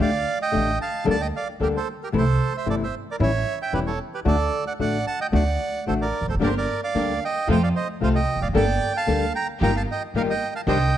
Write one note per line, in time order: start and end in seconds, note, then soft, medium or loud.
0.00 0.23 D2 medium
0.00 0.10 G4 medium
0.00 0.39 D5 medium
0.00 0.38 F5 medium
0.42 0.79 D#5 medium
0.42 0.79 G5 medium
0.52 0.77 A1 medium
0.52 0.70 D3 soft
0.52 0.70 A3 medium
0.52 0.70 D4 medium
0.52 0.71 G4 medium
0.81 1.06 F5 medium
0.81 1.06 A5 medium
1.04 1.30 D2 medium
1.04 1.15 D3 medium
1.04 1.15 G3 medium
1.04 1.15 A#3 medium
1.04 1.16 D4 medium
1.04 1.15 A4 medium
1.10 1.22 D5 medium
1.10 1.21 A5 medium
1.21 1.28 D#5 medium
1.21 1.27 G5 medium
1.36 1.48 D5 soft
1.36 1.48 F5 medium
1.60 1.83 D2 medium
1.60 1.77 D3 soft
1.60 1.78 G3 medium
1.60 1.78 A#3 medium
1.60 1.77 D4 medium
1.60 1.68 G4 medium
1.60 1.78 A4 medium
1.60 1.68 A#4 medium
1.77 1.89 A4 medium
1.77 1.88 C5 medium
2.03 2.09 G4 soft
2.03 2.09 A#4 medium
2.12 2.36 C2 medium
2.12 2.22 C3 medium
2.12 2.22 E3 medium
2.12 2.22 A3 medium
2.12 2.23 C4 medium
2.12 2.23 E4 medium
2.18 2.53 A4 medium
2.18 2.56 C5 medium
2.57 2.68 C5 soft
2.57 2.68 E5 medium
2.66 2.89 G1 soft
2.66 2.84 C3 medium
2.66 2.84 E3 medium
2.66 2.83 A3 soft
2.66 2.84 C4 medium
2.66 2.84 E4 medium
2.70 2.76 A4 medium
2.70 2.75 D5 medium
2.83 2.95 C5 soft
2.83 2.95 E5 medium
3.11 3.16 A#4 medium
3.11 3.16 D5 medium
3.19 3.42 A1 medium
3.19 3.29 E3 medium
3.19 3.29 G3 medium
3.19 3.29 C#4 medium
3.19 3.29 E4 medium
3.19 3.59 C#5 medium
3.19 3.59 E5 medium
3.62 3.74 E5 medium
3.62 3.74 G5 medium
3.73 3.96 E1 soft
3.73 3.90 E3 medium
3.73 3.90 G3 soft
3.73 3.90 C#4 medium
3.73 3.91 E4 medium
3.73 3.80 G4 medium
3.73 3.80 B4 medium
3.87 3.99 A4 medium
3.87 3.99 C#5 medium
4.14 4.20 G4 soft
4.14 4.20 B4 medium
4.25 4.49 D2 medium
4.25 4.35 D3 medium
4.25 4.35 A3 medium
4.25 4.35 D4 medium
4.25 4.35 F#4 medium
4.25 4.65 A4 medium
4.25 4.65 D5 medium
4.67 4.73 D5 medium
4.67 4.73 F#5 medium
4.79 5.02 A1 soft
4.79 4.97 D3 soft
4.79 4.97 A3 medium
4.79 4.97 D4 soft
4.79 4.97 F#4 soft
4.79 5.06 D5 medium
4.79 5.05 F#5 medium
5.07 5.20 F#5 medium
5.07 5.19 A5 medium
5.21 5.27 D#5 medium
5.21 5.27 G5 medium
5.32 5.56 D2 medium
5.32 5.42 D3 medium
5.32 5.42 A3 medium
5.32 5.42 D4 medium
5.32 5.43 F#4 medium
5.32 5.85 D5 medium
5.32 5.84 F#5 medium
5.86 6.10 A1 soft
5.86 6.04 D3 soft
5.86 6.05 A3 soft
5.86 6.05 D4 medium
5.86 6.05 F#4 medium
5.86 5.94 A4 medium
5.86 5.94 C5 medium
6.02 6.26 A#4 medium
6.02 6.26 D5 medium
6.21 6.27 E1 soft
6.28 6.34 F1 soft
6.28 6.35 A4 soft
6.28 6.35 C5 medium
6.35 6.41 F#1 medium
6.39 6.64 G1 medium
6.39 6.50 D3 medium
6.39 6.50 G3 medium
6.39 6.50 A#3 medium
6.39 6.50 D4 medium
6.39 6.64 D4 medium
6.39 6.50 G4 medium
6.39 6.64 G4 medium
6.39 6.64 A#4 medium
6.39 6.49 A#4 medium
6.39 6.49 D5 medium
6.46 6.54 C5 medium
6.57 6.81 A#4 medium
6.57 6.81 D5 medium
6.83 7.20 D5 medium
6.83 7.24 F5 medium
6.94 7.17 D2 soft
6.94 7.12 D3 soft
6.94 7.12 G3 soft
6.94 7.12 A#3 soft
6.94 7.17 D4 soft
6.94 7.12 D4 soft
6.94 7.17 G4 soft
6.94 7.12 G4 medium
6.94 7.18 A#4 soft
7.25 7.48 D#5 medium
7.25 7.48 G5 medium
7.47 7.71 F2 medium
7.47 7.57 C3 medium
7.47 7.57 F3 medium
7.47 7.57 A3 medium
7.47 7.57 C4 medium
7.47 7.71 C4 medium
7.47 7.57 F4 medium
7.47 7.71 F4 medium
7.47 7.71 A4 medium
7.52 7.62 C5 medium
7.52 7.63 G5 medium
7.63 7.69 D5 medium
7.63 7.69 F5 medium
7.76 7.87 C5 medium
7.76 7.88 D#5 medium
8.00 8.24 C2 soft
8.00 8.18 C3 soft
8.00 8.18 F3 medium
8.00 8.18 A3 medium
8.00 8.18 C4 medium
8.00 8.25 C4 soft
8.00 8.18 F4 medium
8.00 8.25 F4 soft
8.00 8.25 A4 soft
8.00 8.09 C5 medium
8.00 8.09 F5 medium
8.15 8.40 D#5 medium
8.15 8.43 G5 medium
8.36 8.41 E1 soft
8.41 8.48 F1 soft
8.41 8.48 D5 medium
8.41 8.48 F5 medium
8.48 8.54 F#1 medium
8.53 8.77 G1 medium
8.53 8.63 D3 medium
8.53 8.63 G3 medium
8.53 8.77 A#3 medium
8.53 8.64 A#3 medium
8.53 8.64 D4 medium
8.53 8.77 G4 medium
8.53 8.64 A4 medium
8.53 8.77 A4 medium
8.53 8.93 D5 medium
8.53 8.97 G5 medium
8.97 9.33 F5 medium
8.97 9.33 A5 medium
9.06 9.30 D2 soft
9.06 9.24 D3 medium
9.06 9.25 G3 medium
9.06 9.24 A#3 soft
9.06 9.30 A#3 soft
9.06 9.25 D4 medium
9.06 9.30 G4 soft
9.06 9.30 A4 soft
9.06 9.25 A4 medium
9.35 9.47 G5 medium
9.35 9.48 A#5 medium
9.60 9.83 G1 medium
9.60 9.71 D#3 medium
9.60 9.70 G3 medium
9.60 9.71 A#3 medium
9.60 9.83 D#4 medium
9.60 9.83 F4 medium
9.60 9.71 F4 medium
9.60 9.83 G4 medium
9.60 9.71 G4 medium
9.60 9.74 G5 medium
9.60 9.76 A#5 medium
9.76 9.82 F5 medium
9.76 9.83 A5 medium
9.91 10.03 D#5 medium
9.91 10.03 G5 medium
10.14 10.36 G1 soft
10.14 10.32 D#3 medium
10.14 10.32 G3 medium
10.14 10.32 A#3 medium
10.14 10.37 D#4 soft
10.14 10.37 F4 soft
10.14 10.32 F4 medium
10.14 10.37 G4 soft
10.14 10.32 G4 medium
10.14 10.22 A#4 medium
10.14 10.22 F5 medium
10.30 10.54 D#5 medium
10.30 10.54 G5 medium
10.55 10.61 F5 medium
10.55 10.62 A5 medium
10.67 10.89 C2 medium
10.67 10.76 C3 medium
10.67 10.76 D#3 medium
10.67 10.77 G3 medium
10.67 10.90 D4 medium
10.67 10.77 D4 medium
10.67 10.90 D#4 medium
10.67 10.77 G4 medium
10.67 10.90 C5 medium
10.67 10.98 D#5 medium
10.67 10.98 G5 medium